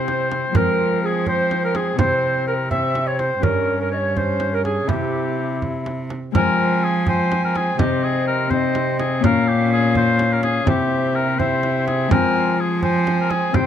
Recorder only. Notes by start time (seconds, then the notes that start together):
Already playing: C5
0.55 A#4
1.03 G#4
1.27 C5 C#5
1.64 A#4
1.75 G#4
1.99 C5
2.47 A#4
2.71 E5
3.07 C#5
3.19 C5
3.43 A#4
3.79 A#4
3.93 D#5
3.98 C#5
4.17 C5
4.53 A#4
4.65 G#4
4.92 G4
6.35 G#5
7.07 G#5
7.79 D#5
8.53 D#5
9.23 F5
10.66 E5
11.39 E5
12.11 G#5
12.83 G#5
13.55 G5